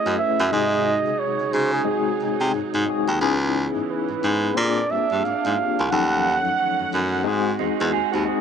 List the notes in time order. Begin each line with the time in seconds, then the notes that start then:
Already playing: A3 C#4 E4 G#4 C#5 D#5
0.06 F#2
0.16 A3 C#4 E4 G#4 E5
0.20 B4
0.39 F#2
0.50 G#2 C3 F#3 G#3 D#4 F#4 D#5
0.54 G#4
1.06 C#3
1.19 C#5
1.40 C#3
1.52 C#3 C5
1.73 G#4
1.84 G#3 C4 D#4 F#4 G#4
2.21 C3
2.40 C3
2.54 G#2
2.74 G#2
2.86 G#3 C4 D#4 F#4
2.90 G#4
3.08 D#2
3.19 C#2 C#3 E3 B3 C#4 D#4 E4
3.23 G#4
3.76 G#2
3.90 B4
4.10 G#2
4.23 G#2
4.54 A#2 A#3 C4 D4 F4 D5
4.58 G4
4.64 G#4
4.91 G2 E5
5.11 G2
5.24 G#2 F5
5.45 G#2
5.55 A#3 C4 D4 F4
5.59 G4
5.79 C2
5.86 F#3 C#4 F5
5.91 D#2 D#3 F3 A3 C#4 D#4 A4 F#5
6.46 F#2
6.80 F#2
6.93 F#2
7.24 G#2 G#3 C4 D#4 F#4 G#4
7.59 E2 G#3 D#4
7.80 E2
7.93 D#2 D#4 G#4
8.12 D#2 C4 F#4
8.25 G#3 C4 D#4 F#4 G#4